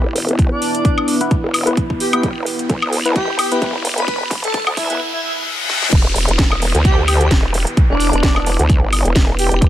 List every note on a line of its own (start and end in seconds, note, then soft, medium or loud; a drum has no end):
0.00 0.26 F1 loud
0.00 4.96 B3 medium
0.00 4.96 E4 medium
0.00 4.96 B4 medium
0.00 riser medium
0.16 open hi-hat loud
0.28 0.50 F1 medium
0.28 closed hi-hat medium
0.39 kick loud
0.39 closed hi-hat medium
0.52 1.16 D4 loud
0.62 open hi-hat loud
0.75 closed hi-hat medium
0.85 kick loud
0.85 closed hi-hat soft
0.98 high woodblock medium
1.08 open hi-hat loud
1.21 1.36 B3 medium
1.21 1.36 E4 medium
1.21 1.36 B4 loud
1.21 closed hi-hat medium
1.31 kick loud
1.31 closed hi-hat medium
1.44 1.76 E1 loud
1.54 open hi-hat loud
1.54 high woodblock medium
1.67 1.76 B3 medium
1.67 1.76 E4 medium
1.67 1.76 B4 loud
1.67 closed hi-hat medium
1.77 kick loud
1.77 closed hi-hat medium
1.90 kick medium
2.00 2.08 G4 medium
2.00 open hi-hat loud
2.13 2.28 B3 medium
2.13 2.28 E4 medium
2.13 2.20 G4 medium
2.13 2.28 B4 loud
2.13 closed hi-hat medium
2.13 high woodblock medium
2.23 2.45 E1 loud
2.23 kick loud
2.23 closed hi-hat soft
2.46 open hi-hat loud
2.59 closed hi-hat medium
2.69 3.14 D2 loud
2.69 kick loud
2.69 closed hi-hat soft
2.82 high woodblock medium
2.93 open hi-hat loud
3.05 3.21 B3 medium
3.05 3.21 E4 medium
3.05 3.21 B4 medium
3.05 closed hi-hat medium
3.16 3.37 E1 medium
3.16 3.33 G4 medium
3.16 kick loud
3.16 closed hi-hat soft
3.39 3.47 G4 medium
3.39 open hi-hat loud
3.39 high woodblock medium
3.52 3.60 B3 loud
3.52 3.60 E4 medium
3.52 3.58 G4 medium
3.52 3.60 B4 loud
3.52 closed hi-hat medium
3.62 3.96 F1 loud
3.62 3.73 B3 medium
3.62 3.73 E4 medium
3.62 3.73 B4 loud
3.62 kick loud
3.62 closed hi-hat soft
3.85 open hi-hat loud
3.98 4.19 F1 loud
3.98 4.04 B4 medium
3.98 closed hi-hat medium
4.08 4.16 B4 medium
4.08 kick loud
4.08 closed hi-hat soft
4.21 4.65 E1 loud
4.31 kick loud
4.31 open hi-hat loud
4.44 4.59 A4 loud
4.44 closed hi-hat medium
4.54 kick loud
4.54 closed hi-hat soft
4.67 4.88 D2 loud
4.67 high woodblock medium
4.77 4.94 E4 medium
4.77 kick loud
4.77 open hi-hat loud
4.90 5.00 B3 loud
4.90 5.00 E4 medium
4.90 5.00 B4 loud
4.90 closed hi-hat medium
5.00 reverse cymbal medium
5.13 5.20 E4 medium
5.23 5.32 E4 medium
5.69 snare medium
5.82 snare medium
5.93 6.14 E1 loud
5.93 9.69 B3 medium
5.93 9.69 E4 medium
5.93 9.69 B4 medium
5.93 kick loud
5.93 closed hi-hat medium
5.93 crash loud
5.93 downlifter medium
6.16 6.26 E1 loud
6.16 open hi-hat loud
6.28 6.73 E1 loud
6.28 closed hi-hat medium
6.39 kick loud
6.39 snare loud
6.39 closed hi-hat medium
6.52 high woodblock medium
6.62 open hi-hat loud
6.75 6.96 D2 medium
6.75 closed hi-hat medium
6.85 7.02 G4 medium
6.85 kick loud
6.85 closed hi-hat medium
6.98 7.29 D2 loud
7.08 7.16 G4 medium
7.08 open hi-hat loud
7.08 high woodblock medium
7.21 7.27 G4 medium
7.21 closed hi-hat medium
7.31 7.65 E1 loud
7.31 kick loud
7.31 snare loud
7.31 closed hi-hat medium
7.54 open hi-hat loud
7.67 closed hi-hat medium
7.77 kick loud
7.77 closed hi-hat medium
7.90 8.11 E1 loud
7.90 8.54 D4 loud
8.00 open hi-hat loud
8.13 8.57 E1 medium
8.13 closed hi-hat medium
8.23 kick loud
8.23 snare loud
8.23 closed hi-hat medium
8.36 high woodblock medium
8.46 open hi-hat loud
8.59 8.80 D2 medium
8.59 closed hi-hat medium
8.70 kick loud
8.70 closed hi-hat medium
8.82 9.03 G1 loud
8.93 open hi-hat loud
8.93 high woodblock medium
9.05 9.50 E1 medium
9.05 closed hi-hat medium
9.15 kick loud
9.15 snare loud
9.15 closed hi-hat medium
9.39 9.47 G4 medium
9.39 open hi-hat loud
9.52 9.60 E1 loud
9.52 9.58 G4 medium
9.52 closed hi-hat medium
9.62 9.69 E1 loud
9.62 kick loud
9.62 closed hi-hat medium